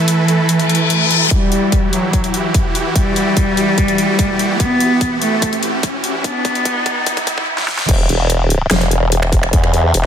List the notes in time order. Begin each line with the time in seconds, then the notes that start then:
Already playing: E3 A3 E4 A4 B4
0.08 closed hi-hat
0.28 closed hi-hat
0.49 closed hi-hat, reverse cymbal
0.59 closed hi-hat
0.70 closed hi-hat
0.75 closed hi-hat
0.90 closed hi-hat
1.11 closed hi-hat
1.31 E3 G3 E4 F#4 G4, kick, closed hi-hat, riser
1.52 closed hi-hat
1.72 kick, closed hi-hat
1.93 F#3, closed hi-hat
2.13 kick, closed hi-hat
2.24 closed hi-hat
2.34 closed hi-hat
2.54 kick, closed hi-hat
2.75 closed hi-hat
2.96 G3, kick, closed hi-hat
3.16 closed hi-hat
3.37 kick, closed hi-hat
3.57 closed hi-hat
3.78 kick, closed hi-hat
3.88 closed hi-hat
3.98 closed hi-hat
4.19 kick, closed hi-hat
4.39 closed hi-hat
4.60 B3, kick, closed hi-hat
4.80 closed hi-hat
5.01 kick, closed hi-hat
5.22 A3, closed hi-hat
5.42 kick, closed hi-hat
5.53 closed hi-hat
5.63 closed hi-hat
5.83 kick, closed hi-hat
6.04 closed hi-hat
6.24 B3, kick, closed hi-hat
6.45 kick, closed hi-hat
6.55 closed hi-hat
6.65 kick, closed hi-hat
6.86 kick, closed hi-hat
7.06 kick, closed hi-hat
7.17 kick, closed hi-hat
7.27 kick, closed hi-hat
7.38 kick
7.58 snare
7.68 snare
7.79 snare
7.89 E1, kick, closed hi-hat, crash
8.09 E1, closed hi-hat
8.30 closed hi-hat
8.50 closed hi-hat
8.71 E1, snare, closed hi-hat
8.81 closed hi-hat
8.91 closed hi-hat
9.12 closed hi-hat
9.23 finger snap
9.32 kick, closed hi-hat
9.43 finger snap
9.53 E2, kick, closed hi-hat
9.64 finger snap
9.74 closed hi-hat
9.94 E1, closed hi-hat